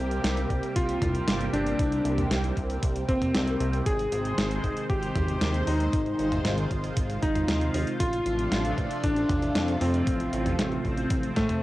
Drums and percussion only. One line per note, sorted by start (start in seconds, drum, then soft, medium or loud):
0.11 closed hi-hat soft
0.24 snare loud
0.24 closed hi-hat loud
0.37 closed hi-hat soft
0.50 kick medium
0.50 closed hi-hat soft
0.63 closed hi-hat soft
0.76 kick loud
0.76 closed hi-hat medium
0.89 closed hi-hat soft
1.02 kick loud
1.02 closed hi-hat medium
1.02 mid tom medium
1.15 closed hi-hat soft
1.28 snare loud
1.28 closed hi-hat loud
1.41 closed hi-hat soft
1.54 closed hi-hat medium
1.67 closed hi-hat soft
1.79 kick loud
1.79 closed hi-hat medium
1.92 closed hi-hat soft
2.05 closed hi-hat medium
2.18 closed hi-hat soft
2.18 mid tom medium
2.31 snare loud
2.31 closed hi-hat medium
2.44 closed hi-hat soft
2.57 kick medium
2.57 closed hi-hat soft
2.70 closed hi-hat soft
2.83 kick loud
2.83 closed hi-hat medium
2.96 closed hi-hat soft
3.09 kick loud
3.09 closed hi-hat medium
3.22 closed hi-hat soft
3.22 mid tom medium
3.35 snare loud
3.35 closed hi-hat medium
3.47 closed hi-hat soft
3.60 closed hi-hat medium
3.73 closed hi-hat soft
3.86 kick loud
3.86 closed hi-hat medium
3.99 closed hi-hat soft
4.12 closed hi-hat medium
4.25 closed hi-hat soft
4.38 snare loud
4.38 closed hi-hat medium
4.51 closed hi-hat soft
4.64 kick medium
4.64 closed hi-hat soft
4.77 closed hi-hat soft
4.90 kick loud
4.90 closed hi-hat medium
5.03 closed hi-hat soft
5.16 kick loud
5.16 closed hi-hat medium
5.16 mid tom medium
5.29 closed hi-hat soft
5.41 snare loud
5.41 closed hi-hat medium
5.54 closed hi-hat soft
5.67 open hi-hat medium
5.80 closed hi-hat soft
5.93 kick loud
5.93 closed hi-hat medium
6.06 closed hi-hat soft
6.19 closed hi-hat medium
6.32 closed hi-hat soft
6.32 mid tom medium
6.45 snare loud
6.45 closed hi-hat medium
6.58 closed hi-hat soft
6.71 kick medium
6.71 closed hi-hat soft
6.84 closed hi-hat soft
6.97 kick loud
6.97 closed hi-hat medium
7.10 closed hi-hat soft
7.22 kick loud
7.22 closed hi-hat medium
7.35 closed hi-hat soft
7.35 mid tom medium
7.48 snare loud
7.48 closed hi-hat medium
7.61 closed hi-hat soft
7.74 open hi-hat medium
7.87 closed hi-hat soft
8.00 kick loud
8.00 closed hi-hat medium
8.13 closed hi-hat soft
8.26 closed hi-hat medium
8.39 closed hi-hat soft
8.52 snare loud
8.52 closed hi-hat medium
8.65 closed hi-hat soft
8.78 kick medium
8.78 closed hi-hat soft
8.91 closed hi-hat soft
9.03 kick loud
9.03 closed hi-hat medium
9.16 closed hi-hat soft
9.29 kick loud
9.29 closed hi-hat medium
9.29 mid tom medium
9.42 closed hi-hat soft
9.55 snare loud
9.55 closed hi-hat medium
9.68 closed hi-hat soft
9.81 open hi-hat medium
9.94 closed hi-hat soft
10.07 kick loud
10.07 closed hi-hat medium
10.20 closed hi-hat soft
10.33 closed hi-hat medium
10.46 closed hi-hat soft
10.46 mid tom medium
10.59 snare loud
10.59 closed hi-hat loud
10.72 closed hi-hat soft
10.85 kick medium
10.85 closed hi-hat soft
10.97 closed hi-hat soft
11.10 kick loud
11.10 closed hi-hat medium
11.23 closed hi-hat soft
11.36 kick loud
11.36 snare medium
11.36 closed hi-hat medium
11.49 closed hi-hat soft
11.49 mid tom medium